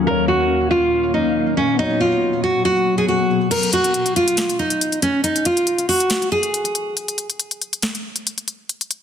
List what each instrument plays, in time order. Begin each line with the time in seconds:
Already playing: ambient pad C#4
0.03 ambient pad A#2 A#3 F5, grand piano A#3 F5
0.07 nylon-string guitar A#4, grand piano C#5
0.28 nylon-string guitar F#4
0.71 nylon-string guitar F4
1.14 nylon-string guitar D#4
1.57 nylon-string guitar C#4
1.75 grand piano F#3 B3
1.79 ambient pad B2 F#3 B3, nylon-string guitar D#4, grand piano C#5
2.00 nylon-string guitar F4
2.44 nylon-string guitar F#4
2.65 nylon-string guitar F#4
2.98 nylon-string guitar G#4
3.08 nylon-string guitar F#4
3.51 nylon-string guitar A#4, closed hi-hat, crash
3.63 closed hi-hat
3.73 nylon-string guitar F#4, closed hi-hat
3.84 closed hi-hat
3.94 closed hi-hat
4.06 closed hi-hat
4.16 nylon-string guitar F4, closed hi-hat
4.28 closed hi-hat
4.37 snare, closed hi-hat
4.50 closed hi-hat
4.59 nylon-string guitar D#4
4.70 closed hi-hat
4.81 closed hi-hat
4.92 closed hi-hat
5.02 nylon-string guitar C#4, closed hi-hat
5.24 nylon-string guitar D#4, closed hi-hat
5.36 closed hi-hat
5.45 nylon-string guitar F4, closed hi-hat
5.57 closed hi-hat
5.67 closed hi-hat
5.78 closed hi-hat
5.89 nylon-string guitar F#4, closed hi-hat, open hi-hat
6.00 closed hi-hat
6.10 snare, closed hi-hat
6.22 closed hi-hat
6.32 nylon-string guitar G#4
6.43 closed hi-hat
6.54 closed hi-hat
6.65 closed hi-hat
6.75 closed hi-hat
6.97 closed hi-hat
7.08 closed hi-hat
7.18 closed hi-hat
7.30 closed hi-hat
7.40 closed hi-hat
7.51 closed hi-hat
7.62 closed hi-hat
7.73 closed hi-hat
7.83 snare, closed hi-hat
7.95 closed hi-hat
8.16 closed hi-hat
8.27 closed hi-hat
8.38 closed hi-hat
8.48 closed hi-hat
8.69 closed hi-hat
8.81 closed hi-hat
8.91 closed hi-hat